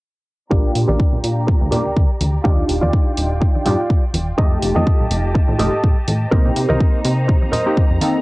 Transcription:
0.50 A#1 A#3 D4 F4 G4 A#4 D5 A#5, kick
0.75 A#2, open hi-hat
0.88 A#1 G4 A#4 D5, tambourine, high conga
1.00 kick
1.13 tambourine, low conga
1.24 A#2, open hi-hat, tambourine
1.47 muted clean electric guitar stroke, kick
1.60 D2, muted clean electric guitar stroke, tambourine, high conga
1.71 A#2 A#3 D4 F4 G4 A#4 D5, open hi-hat, tambourine, low conga
1.85 D2, tambourine
1.96 D2, kick
2.20 D2, open hi-hat, tambourine, high conga
2.34 tambourine
2.44 D#2 D4 D#4 F4 G4 D5 G5, kick
2.69 D#1, open hi-hat
2.81 D#2 F4 G4 D5, tambourine, high conga
2.93 kick, tambourine
3.07 tambourine
3.17 D#1, open hi-hat
3.41 muted clean electric guitar stroke, kick
3.54 muted clean electric guitar stroke, tambourine, high conga
3.65 G2 D4 D#4 F4 G4 D5, open hi-hat, tambourine, low conga
3.79 tambourine
3.90 kick
4.14 D#1, open hi-hat, tambourine, high conga
4.27 tambourine
4.37 F2 A3 D#4 F4 G4 A4 D#5 A5, kick
4.52 tambourine
4.62 F1, open hi-hat
4.75 F2 G4 A4 D#5, tambourine, high conga
4.86 kick, tambourine
5.00 tambourine, low conga
5.11 F1, open hi-hat, tambourine
5.35 muted clean electric guitar stroke, kick
5.48 A2, muted clean electric guitar stroke, tambourine, high conga
5.59 F1 A3 D#4 F4 G4 A4 D#5, open hi-hat, tambourine, low conga
5.73 A2, tambourine
5.84 A2, kick
5.97 tambourine
6.08 A2, open hi-hat, tambourine, high conga
6.21 tambourine
6.31 C2 A#3 C4 D#4 G4 A#4 C5 D#5 A#5, kick
6.45 tambourine, low conga
6.56 C3, open hi-hat, tambourine
6.69 C2 A#4 C5 D#5, tambourine, high conga
6.80 kick, tambourine
6.94 tambourine
7.05 C3, open hi-hat
7.28 muted clean electric guitar stroke, kick
7.42 muted clean electric guitar stroke, tambourine, high conga
7.52 A#4 C5 D#5, open hi-hat, tambourine, low conga
7.66 A#3 C4 D#4 G4, tambourine
7.77 kick, tambourine
7.89 F2, tambourine
8.01 A#3 C4 D#4 A4, open hi-hat, tambourine, high conga
8.14 tambourine

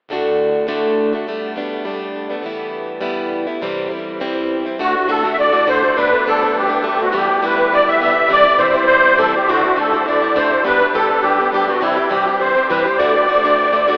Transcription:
0.09 D2 A2 D3 A3 D4 F#4
0.67 D2 A2 D3 A3 D4 F#4
1.13 D3 A3 D4 F#4
1.28 G3 A3 B3 D4
1.55 G3 A3 B3 D4
1.85 G3 A3 B3 D4
2.29 A3 B3 D4
2.43 E3 G3 B3 E4
3.01 E3 G3 B3 E4
3.47 G3 B3 E4
3.62 C3 E3 G3 C4 E4
3.89 E3 G3 C4 E4
4.20 C3 E3 G3 C4 E4
4.65 G3 C4 E4
4.78 D2 A2 D3 A3 D4 F#4
4.94 D3 A3 D4 F#4
5.08 D2 A2 D3 A3 D4 F#4 A4
5.23 D3 A3 D4 F#4
5.31 E5
5.37 D3 A3 D4 F#4 D5
5.52 D3 A3 D4 F#4
5.65 D2 A2 D3 A3 D4 F#4 C5
5.82 D3 A3 D4 F#4
5.96 G3 A3 B3 D4 B4
6.12 A3 B3 D4
6.26 G3 A3 B3 D4 A4
6.41 A3 B3 D4
6.55 G3 A3 B3 D4 G4
6.69 A3 B3 D4
6.83 G3 A3 B3 D4
6.87 G4
6.99 A3 B3 D4 F#4
7.12 E3 G3 B3 E4
7.16 G4
7.28 G3 B3 E4
7.41 E3 G3 B3 E4
7.45 B4
7.56 G3 B3 E4
7.71 E3 G3 B3 E4 D5
7.86 G3 B3 E4 E5
8.00 E3 G3 B3 E4 E5
8.15 G3 B3 E4
8.29 C3 E3 G3 C4 E4 D5
8.44 G3 C4 E4
8.58 C3 E3 G3 C4 E4 C5
8.69 C5
8.74 G3 C4 E4 C5
8.86 E3 G3 C4 E4 C5
9.03 G3 C4 E4
9.17 C3 E3 G3 C4 E4 A4
9.34 G3 C4 E4 G4
9.48 D2 A2 D3 A3 D4 E4 F#4
9.63 D3 A3 D4 E4
9.76 D2 A2 D3 A3 D4 E4 A4
9.92 D3 A3 D4 E4
10.05 D3 A3 D4 E4 D5
10.22 D3 A3 D4 E4
10.35 D2 A2 D3 A3 D4 E4 C5
10.50 D3 A3 D4 E4
10.64 G3 B3 D4 G4 B4
10.79 D4 G4
10.94 G3 B3 D4 G4 A4
11.09 B3 D4 G4
11.22 G3 B3 D4 G4
11.38 B3 D4 G4
11.52 G3 B3 D4 G4
11.67 B3 D4 F#4 G4
11.81 C3 E3 G3 C4 E4 G4
11.97 G3 C4 G4
12.10 C3 E3 G3 C4 G4
12.25 G3 C4 G4
12.39 E3 G3 C4 G4 C5
12.55 G3 C4 G4
12.69 C3 E3 G3 C4 G4 B4
12.84 C4 G4 C5
12.88 G3
12.97 D2 A2 D3 A3 D4 F#4 D5
13.13 D3 A3 D4 F#4
13.27 D2 A2 D3 A3 D4 F#4
13.43 D3 A3 D4 F#4
13.56 D3 A3 F#4
13.72 D3 A3 D4 F#4
13.87 D2 A2 D3 A3 D4 F#4

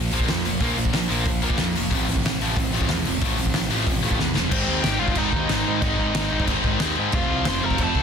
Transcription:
Already playing: A#2 F3 A#3
0.11 A#1 A#2 F3 A#3, open hi-hat
0.20 kick
0.26 F2 A#2 F3, snare, open hi-hat
0.30 A#3
0.45 F1 A#2 F3, open hi-hat
0.60 A#1 A#2 F3 A#3, kick, open hi-hat
0.77 A#1 A#2 F3, open hi-hat
0.85 kick
0.93 A#1 A#2 F3, snare, open hi-hat
1.08 A#1 A#2 F3 A#3, open hi-hat
1.25 A#1 A#2 F3, kick, open hi-hat
1.42 A#1 A#2 F3 A#3, open hi-hat
1.50 kick
1.57 F2 A#2 F3 A#3, snare, open hi-hat
1.75 F1 A#2 F3, open hi-hat
1.89 A1 F2 A2 C3 F3 A3, kick, open hi-hat
1.94 F3
2.08 A1 F2 A2 C3 F3, open hi-hat
2.16 kick
2.25 A1 F2 A2 C3 F3, snare, open hi-hat
2.40 A1 F2 A2 C3 F3 A3, open hi-hat
2.56 A1 F2 A2 C3 F3, kick, open hi-hat
2.73 A1 F2 A2 C3 F3 A3, open hi-hat
2.81 kick
2.87 E2 F2 A2 C3 F3, snare, open hi-hat
3.05 E1 F2 A2 C3 F3, open hi-hat
3.21 A1 F2 A2 C3 F3 A3, kick, open hi-hat
3.38 A1 F2 A2 C3 F3, open hi-hat
3.46 kick
3.54 A1 F2 A2 C3 F3, snare, open hi-hat
3.70 A1 F2 A2 C3 F3 A3, open hi-hat
3.75 F2
3.87 A1 F2 A2 C3 F3, kick, open hi-hat
4.02 A1 F2 A2 C3 F3 A3, open hi-hat
4.11 kick
4.18 E2 F2 A2 C3 F3, snare
4.35 E1 F2 A2 C3 F3, snare
4.49 G#1 G#2 D#3 G#3 C4 D#4 C5, kick, crash
4.53 C4
4.68 D#2 G#2 D#3 G#3
4.83 G#1 G#2 D#3 G#3 G4 G5, snare, crash
4.99 G#1 G#2 D#3 G#3 C4 D#4 F4 F5
5.08 kick
5.15 G#1 G#2 D#3 G#3 D#4 D#5, kick, crash
5.32 D#2 G#2 D#3 G#3, kick
5.49 G#1 G#2 D#3 G#3 C4 D#4, snare, crash
5.53 G#3
5.66 G#2 D#3 G#3
5.81 G#1 G#2 D#3 G#3 C4 D#4 D#5, kick, crash
5.99 G#1 G#2 D#3 G#3
6.15 G#1 G#2 D#3 G#3, snare, crash
6.31 G#1 G#2 D#3 G#3 C4 D#4
6.40 kick
6.47 G#1 G#2 D#3 G#3, kick, crash
6.64 G#1 G#2 D#3 G#3, kick
6.80 D#2 G#2 D#3 G#3 C4 D#4, snare, crash
6.98 G#2 D#3 G#3
7.12 F1 F2 C3 F3 A3 C4 F4 F5, kick, crash
7.30 C2 F2 C3 F3
7.45 F1 F2 C3 F3 C5 C6, snare, crash
7.61 F1 F2 C3 F3 A3 C4 F4 A#4
7.66 A#5
7.70 kick
7.78 F1 F2 C3 F3 A4, kick, crash
7.84 A5
7.94 C2 F2 C3 F3, kick

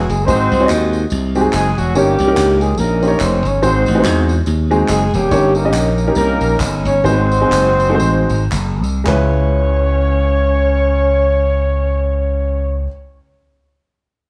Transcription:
Already playing: E4
0.08 F#1 G#3 G#4, tambourine
0.26 G#1 G#2 G#3 C4 D#4 F#4 C5, tambourine
0.52 C2, tambourine
0.60 G#3 C4 D#4 F#4 C#5
0.66 D#2 D#5, clap, tambourine
0.93 tambourine
1.10 C2, tambourine
1.35 G#3 C4 D#4 F#4 G4, tambourine
1.41 G#4
1.53 F#1 G#3 G#4, clap, tambourine
1.78 E1 F#3 F#4, tambourine
1.95 G1 G2 G3 A#3 C#4 D#4 G4 C#5, tambourine
2.19 C2, tambourine
2.27 A#3 C#4 D#4 G4 A#4
2.37 C#2, clap, tambourine
2.61 G#3 G#4, tambourine
2.77 A#1 A#3 C#4 D#4 A#4, tambourine
3.02 A#3 C#4 D#4 G4 C5, tambourine
3.08 C#5
3.20 F1 C4 C5, clap, tambourine
3.45 G1 C#4 C#5, tambourine
3.62 G#1 G#2 G#3 C4 D#4 F#4 C5, tambourine
3.86 A1, tambourine
3.95 G#3 C4 D#4 F#4 B4
4.00 C5
4.04 E2, clap, tambourine
4.29 tambourine
4.46 D#2, tambourine
4.71 G#3 C4 D#4 F#4 G#4, tambourine
4.88 F#1 G#3 G#4, clap, tambourine
5.13 E1 G3 A#3 C#4 G4, tambourine
5.31 G1 G2 A#3 C#4 D#4 G4 C#5, tambourine
5.55 A#3 C#4 D#4 A#4, tambourine
5.65 A#3 C#4 D#4 G4 D#5
5.73 A#1, clap, tambourine
5.98 tambourine
6.07 A#3 C#4 D#4 G4 A#4
6.15 C2 A#3 C#4 D#4 A#4, tambourine
6.41 A#1, tambourine
6.60 G1, clap, tambourine
6.85 G1 C#4 C#5, tambourine
7.04 G#1 G#2 G#3 C4 D#4 F#4 C5, tambourine
7.32 tambourine
7.41 G#3 C4 D#4 F#4 G#4
7.51 F#1, clap, tambourine
7.80 tambourine
7.89 G#3 C4 D#4 F#4 A4
7.95 C5
8.00 A1, tambourine
8.29 G#1, tambourine
8.52 F#1, clap, tambourine
8.83 C2, tambourine
9.04 C#2 G#3 C#4 E4 C#5, clap
9.08 B4

